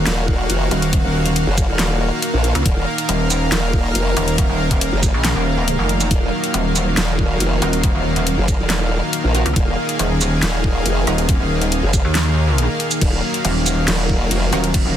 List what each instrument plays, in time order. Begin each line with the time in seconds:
Already playing: supersaw synth D#3 A#3 F#4 F5
0.06 wobble bass D#1, snare, clap, closed hi-hat
0.28 kick
0.50 wobble bass F1, closed hi-hat
0.71 wobble bass D#1, closed hi-hat
0.82 closed hi-hat
0.93 kick, closed hi-hat
1.04 wobble bass D#1
1.26 closed hi-hat
1.36 closed hi-hat
1.47 wobble bass F#1
1.58 kick, closed hi-hat, shaker
1.69 wobble bass D#1
1.79 snare, clap, closed hi-hat
2.22 closed hi-hat
2.34 wobble bass A#1
2.44 closed hi-hat
2.55 wobble bass C#2, closed hi-hat
2.66 wobble bass D#1, supersaw synth A#4, kick, closed hi-hat
2.98 closed hi-hat
3.09 wobble bass D#1, closed hi-hat
3.30 closed hi-hat, shaker
3.52 wobble bass D#1, snare, clap, closed hi-hat
3.73 kick
3.95 wobble bass F1, closed hi-hat
4.17 wobble bass D#1, closed hi-hat
4.28 closed hi-hat
4.38 kick, closed hi-hat
4.49 wobble bass D#1
4.71 kick, closed hi-hat
4.81 closed hi-hat
4.93 wobble bass F#1
5.03 kick, closed hi-hat, shaker
5.14 wobble bass A#1
5.25 snare, clap, closed hi-hat
5.36 wobble bass D#1
5.68 closed hi-hat
5.79 wobble bass F1
5.89 closed hi-hat
6.00 closed hi-hat, shaker
6.11 wobble bass D#1, supersaw synth F#3, kick, closed hi-hat
6.44 closed hi-hat
6.54 wobble bass D#1, closed hi-hat
6.76 closed hi-hat, shaker
6.97 wobble bass D#1, snare, clap, closed hi-hat
7.19 kick
7.40 wobble bass F1, closed hi-hat
7.62 wobble bass D#1, synth stab D#4 F4 F#4 A#4, closed hi-hat
7.73 closed hi-hat
7.84 kick, closed hi-hat
7.95 wobble bass D#1
8.16 closed hi-hat
8.27 closed hi-hat
8.38 wobble bass F#1
8.48 kick, closed hi-hat, shaker
8.59 wobble bass D#1
8.70 snare, clap, closed hi-hat
9.13 closed hi-hat
9.24 wobble bass A#1
9.35 synth stab D#4 F4 F#4 A#4, closed hi-hat
9.46 wobble bass C#2, closed hi-hat
9.56 wobble bass D#1, supersaw synth G#4, kick, closed hi-hat
9.89 closed hi-hat
9.99 wobble bass D#1, closed hi-hat
10.21 closed hi-hat, shaker
10.42 wobble bass D#1, snare, clap, closed hi-hat
10.64 kick
10.86 wobble bass F1, closed hi-hat
11.07 wobble bass D#1, synth stab D#4 F4 F#4 A#4, closed hi-hat
11.18 closed hi-hat
11.29 kick, closed hi-hat
11.40 wobble bass D#1
11.62 closed hi-hat
11.72 closed hi-hat
11.83 wobble bass F#1
11.94 kick, closed hi-hat, shaker
12.05 wobble bass D#2
12.15 snare, clap, closed hi-hat
12.58 closed hi-hat
12.80 closed hi-hat
12.91 closed hi-hat, shaker
13.01 wobble bass D#1, supersaw synth F#3, kick, closed hi-hat, crash
13.34 closed hi-hat
13.45 wobble bass D#1, closed hi-hat, crash
13.66 closed hi-hat, shaker
13.88 wobble bass D#1, snare, clap, closed hi-hat, crash
14.09 kick
14.31 wobble bass F1, closed hi-hat, crash
14.53 wobble bass D#1, synth stab D#4 F4 F#4 A#4, closed hi-hat
14.64 closed hi-hat
14.74 kick, closed hi-hat, crash
14.85 wobble bass D#1